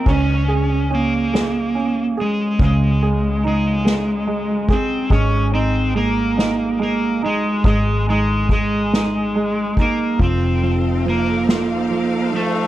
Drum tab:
CC |x-----|------|------|------|
RD |-xxxxx|xxxxxx|xxxxxx|xxxxxx|
SD |---o--|---o--|---o--|---o--|
BD |o-----|o----o|o-----|o-o--o|

CC |------|
RD |x-xxx-|
SD |---o--|
BD |o-----|